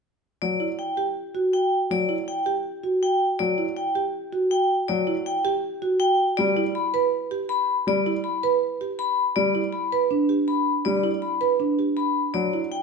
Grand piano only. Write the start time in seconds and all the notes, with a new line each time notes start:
0.42 F#3
1.90 F#3
3.40 F#3
4.89 F#3
6.39 G3
7.87 G3
9.36 G3
10.86 G3
12.34 F#3